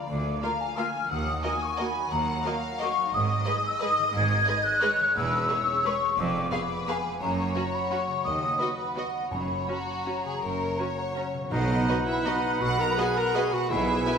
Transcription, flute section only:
0.09 D6
0.43 A#5
0.60 G#5
0.77 F6
1.10 D#6
1.62 C#6
1.79 B5
2.11 A#5
2.80 C#6
3.13 D#6
3.64 E6
3.82 D#6
4.14 G#6
4.65 F#6
5.16 E6
5.85 C#6
6.18 D6
6.52 D6
6.89 G#5
7.22 A#5
7.75 B5
7.91 C#6
8.25 D#6
8.77 B5
8.96 F#5
9.31 B5
9.62 B5
9.69 A#5
11.53 B5
13.70 B5

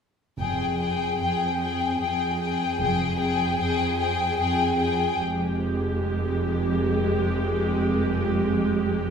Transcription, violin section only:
0.39 G#4 G5
0.79 G#4 G5
1.20 G#4 G5
1.59 G#4 G5
1.99 G#4 G5
2.39 G#4 G5
2.80 G#4 G5
3.18 G#4 G5
3.58 G#4 G5
3.98 G#4 G5
4.38 G#4 G5
4.78 G#4 G5

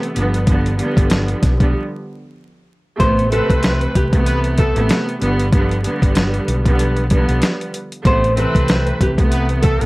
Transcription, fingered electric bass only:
0.16 G1
0.97 G1
1.43 B1
3.00 A1
3.50 C2
3.96 C2
4.76 A1
5.22 G1
6.03 G1
6.48 B1
7.29 B1
8.05 A1
8.55 C2
9.01 C2
9.82 A1

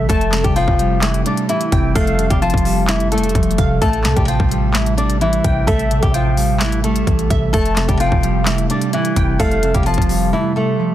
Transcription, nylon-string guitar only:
0.09 A3 A4
0.44 G3 G4
0.56 F3 F4
1.02 E3 E4
1.26 D4 D5
1.49 E3 E4
1.95 A3 A4
2.30 G3 G4
2.42 F3 F4
2.89 E3 E4
3.12 A3 A4
3.82 A3 A4
4.16 G3 G4
4.28 F3 F4
4.75 E3 E4
4.97 D4 D5
5.21 E3 E4
5.67 A3 A4
6.03 G3 G4
6.14 F3 F4
6.60 E3 E4
6.84 A3 A4
7.53 A3 A4
7.88 G3 G4
8.00 F3 F4
8.46 E3 E4
8.70 D4 D5
8.93 E3 E4
9.39 A3 A4
9.74 G3 G4
9.86 F3 F4
10.33 E3 E4
10.56 A3 A4

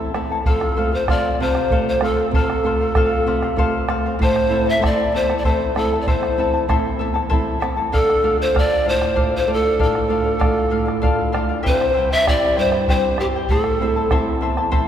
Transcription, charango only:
Already playing: E4 A4 C5 E5 A5
0.14 E4 A4 E5 A5
0.32 E4 A4 A5
0.46 A4 C5 F5
0.76 A4 C5 F5
0.93 C5 F5
1.09 A4 C5 F5
1.40 A4 C5 F5
1.56 C5 F5
1.72 A4 C5 F5
2.03 A4 C5 F5
2.19 C5 F5
2.34 A4 C5 F5
2.65 A4 C5 F5
2.81 C5 F5
2.96 A4 C5 F5
3.27 A4 C5 F5
3.43 C5 F5
3.58 A4 C5 F5
3.89 A4 C5 F5
4.06 C5 F5
4.22 E4 A4 C5 E5 A5
4.52 E4 A4 E5 A5
4.66 E4 A4 A5
4.82 E4 A4 C5 E5 A5
5.14 E4 A4 E5 A5
5.29 E4 A4 A5
5.45 E4 A4 C5 E5 A5
5.76 E4 A4 E5 A5
5.93 E4 A4 A5
6.07 E4 A4 C5 E5 A5
6.39 E4 A4 E5 A5
6.54 E4 A4 A5
6.69 E4 A4 C5 E5 A5
6.99 E4 A4 E5 A5
7.14 E4 A4 A5
7.29 E4 A4 C5 E5 A5
7.60 E4 A4 E5 A5
7.76 E4 A4 A5
7.92 A4 D5 F5
8.23 A4 D5 F5
8.38 D5 F5
8.55 A4 D5 F5
8.86 A4 D5 F5
9.02 D5 F5
9.15 A4 D5 F5
9.47 A4 D5 F5
9.62 D5 F5
9.79 A4 D5 F5
10.09 A4 D5 F5
10.24 D5 F5
10.39 A4 D5 F5
10.70 A4 D5 F5
10.85 D5 F5
11.02 A4 D5 F5
11.32 A4 D5 F5
11.49 D5 F5
11.63 E4 G4 C5 E5 G5
11.94 E4 C5 E5 G5
12.10 E4 C5 G5
12.27 E4 G4 C5 E5 G5
12.55 E4 C5 E5 G5
12.72 E4 C5 G5
12.88 E4 G4 C5 E5 G5
13.19 E4 C5 E5 G5
13.36 E4 C5 G5
13.50 E4 A4 C5 E5 A5
13.82 E4 C5 E5 A5
13.96 E4 C5 A5
14.11 E4 A4 C5 E5 A5
14.41 E4 C5 E5 A5
14.57 E4 C5 A5
14.71 E4 A4 C5 E5 A5

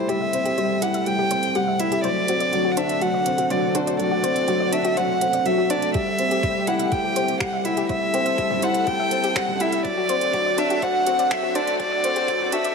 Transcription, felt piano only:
Already playing: G3 C4 E4
0.09 G3
0.33 C4
0.58 G3
0.82 E4
1.07 G3
1.31 C4
1.55 G3
1.80 E4
2.04 F#3
2.29 C4
2.53 F#3
2.77 D4
3.02 F#3
3.26 C4
3.51 F#3
3.75 D4
3.99 F#3
4.24 C4
4.48 F#3
4.72 D4
4.97 F#3
5.21 C4
5.46 F#3
5.70 D4
5.94 G3
6.19 C4
6.43 G3
6.68 E4
6.92 G3
7.16 C4
7.40 G3
7.65 E4
7.89 G3
8.14 C4
8.38 G3
8.63 E4
8.87 G3
9.11 C4
9.36 G3
9.61 E4
9.85 F#3
10.09 C4
10.34 F#3
10.58 D4
10.83 F#3
11.07 C4
11.31 F#3
11.55 D4
11.80 F#3
12.04 C4
12.28 F#3
12.53 D4

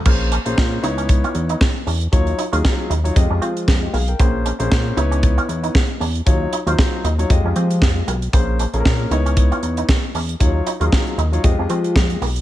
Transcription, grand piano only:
0.05 A#3 C#4 G#4 C5
0.45 A#3 C#4 G#4 C5
0.82 B3 D#4 E4 C#5
2.12 F#3 D#4 F4 C#5
2.52 F#3 D#4 F4 G#4
3.04 F#3 D#4 F4 C#5
3.15 G#3 F4 G4 D#5
3.82 G4 D#5
3.93 G#4 F5
4.08 A#4 G5
4.19 A#3 C#4 G#4 C5
4.59 A#3 C#4 G#4 C5
4.96 B3 D#4 E4 C#5
6.26 F#3 D#4 F4 C#5
6.66 F#3 D#4 F4 C5
7.18 F#3 D#4 F4 C#5
7.30 G#3 F4 G4 D#5
8.33 A#3 C#4 G#4 C5
8.73 A#3 C#4 G#4 A4
8.80 A#4
9.11 B3 D#4 E4 C#5
10.40 F#3 D#4 F4 C#5
10.80 F#3 D#4 F4 G#4
11.32 F#3 D#4 F4 C#5
11.44 G#3 F4 G4 D#5

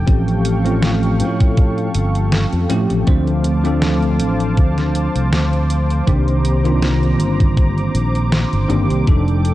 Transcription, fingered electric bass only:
0.07 A1
1.20 A2
1.95 G1
2.53 F2
2.70 A2
2.91 A1
3.07 D2
4.20 A1
4.57 D2
5.15 C2
5.32 D2
6.07 C2
7.20 G1
7.95 A#1
8.53 G1
8.70 G1
8.90 C2
9.07 F1

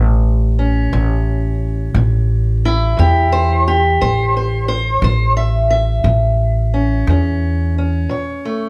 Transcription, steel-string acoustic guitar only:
Already playing: A2 A4
0.59 C#4
0.93 A2
1.96 A2
2.65 E4
2.97 A2 G4
3.32 C5
3.68 G4
4.01 E2 C5
4.37 C5
4.68 C5
5.04 E2 C5
5.37 E5
5.70 E5
6.04 E2
6.74 C#4
7.09 E2 C#4
7.78 C#4
8.09 A2 C#5
8.45 A3

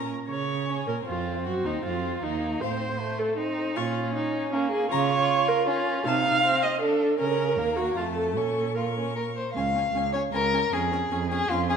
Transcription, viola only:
0.29 C#5
0.88 A#4
1.08 F4
1.47 F#4
1.66 D#4
1.85 F4
2.23 D#4
2.61 C5
3.19 A4
3.37 D#4
3.76 F4
4.15 D#4
4.52 C#4
4.71 G#4
4.91 C#5
5.48 A#4
5.68 F4
6.06 F5
6.63 D#5
6.81 A4
7.20 A#4
7.77 F#4
7.96 F4
8.15 A4
8.34 A4
8.75 A#4
9.55 C#4
9.75 C#4
9.95 C#4
10.15 C#4
10.34 C#4
10.53 C#4
10.72 C#4
10.91 C#4
11.11 C#4
11.31 C#4
11.51 C#4
11.70 C#4

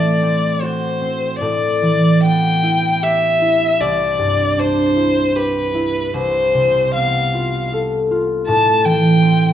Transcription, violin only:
Already playing: D5
0.62 C5
1.40 D5
2.24 G5
3.03 E5
3.81 D5
4.59 C5
5.36 B4
6.14 C5
6.95 F5
8.48 A5
8.85 G5

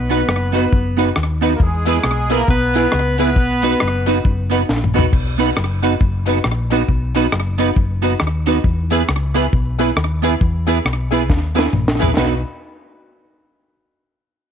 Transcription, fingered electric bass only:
Already playing: B1
0.28 F#1
0.73 F#1
1.17 D#2
1.60 E2
2.04 B1
2.48 B1
2.93 C#2
3.36 B1
3.82 F#1
4.25 F#1
4.69 A#1
5.13 B1
5.57 F#1
6.01 F#1
6.45 A#1
6.88 B1
7.32 F#1
7.76 F#1
8.21 D#2
8.64 E2
9.09 C#2
9.53 B1
9.96 D#2
10.41 E2
10.85 B1
11.30 D#2
11.73 A#1
12.17 B1

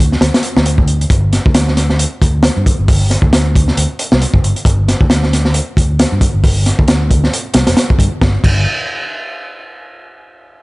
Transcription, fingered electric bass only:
Already playing: D2
0.21 D2
0.56 D2
1.10 G1
1.46 D2
2.22 D2
2.57 G2
2.79 G1
3.22 D2
3.77 D2
4.12 C2
4.34 G1
4.44 G1
4.65 G1
5.01 D2
5.77 D2
6.12 G2
6.34 G1
6.79 D2
7.55 C2
7.67 F1
7.99 G2
8.21 G1
8.44 G1

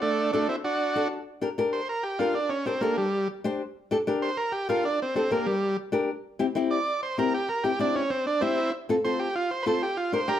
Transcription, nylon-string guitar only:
0.33 D4 F#4 A4
0.95 D4 F#4 A4
1.41 D4 G4 A#4
1.58 D4 G4 A#4
2.19 D4 G4 A#4
2.66 D4 G4 A#4
2.81 D4 G4 A4
3.44 D4 G4 C5
3.91 D4 G4 A4
4.07 D4 G4 A#4
4.69 D4 G4 A#4
5.15 D4 G4 A4
5.31 D4 G4 A#4
5.92 D4 G4 A#4
6.39 C4 E4 G4
6.55 C4 E4 G4
7.18 C4 E4 G4
7.64 C4 E4 G4
7.79 C4 E4 G4
8.42 C4 E4 G4
8.89 C4 F4 A4
9.05 C4 F4 A4
9.66 C4 F4 A4
10.12 D4 G4 A#4
10.28 D4 G4 A#4

